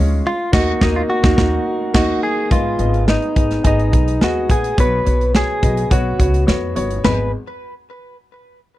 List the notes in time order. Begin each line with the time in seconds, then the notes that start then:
Already playing: D2 G#3 C#4 F4 G#4 C#5 D#5
0.27 F4
0.52 D#2 A#3 D#4 F#4 D#5, kick, snare, crash
0.81 D#2 A#3 D#4 F#4 D#5, kick, snare
0.96 F4
1.10 F#4
1.23 D#2 A#3 D#4 F#4, kick, snare
1.37 D#2 A#3 D#4 F#4, kick, snare
1.94 D#2 A#3 D#4 F#4 D#5, kick, snare, crash
2.23 G#4
2.50 G#1 G#2 B3 F4 G#4 D#5, kick, closed hi-hat
2.79 G#1 B3 G#4 D#5, closed hi-hat
2.94 closed hi-hat
3.07 B3 D#4 G#4 D#5, snare
3.22 closed hi-hat
3.35 G#1 B3 G#4 D#5, kick, closed hi-hat
3.51 snare, closed hi-hat
3.63 G#1 B3 G#4 D#5, kick, closed hi-hat
3.67 D#4
3.79 closed hi-hat
3.92 B1 B3 G#4 D#5, kick, closed hi-hat
4.08 closed hi-hat
4.21 D#2 B3 F#4 G#4 D#5, snare
4.49 A#1 B3 G#4 F#5, kick, closed hi-hat
4.64 closed hi-hat
4.77 B1 B2 B3 F#4 B4 C#5, kick, closed hi-hat
5.05 B1 B3 F#4 C#5, closed hi-hat
5.21 closed hi-hat
5.33 B3 F#4 G#4 C#5, snare
5.62 B1 B3 F#4 D#5, kick, closed hi-hat
5.77 closed hi-hat
5.90 B1 B3 F#4 C#5, kick, closed hi-hat
6.18 C#2 B3 F#4 C#5, kick, closed hi-hat
6.34 closed hi-hat
6.46 F2 B3 F#4 C#5, snare
6.75 G1 B3 F#4 C#5, closed hi-hat
6.91 closed hi-hat
7.04 G#1 B3 G#4 B4 D#5, snare, floor tom, china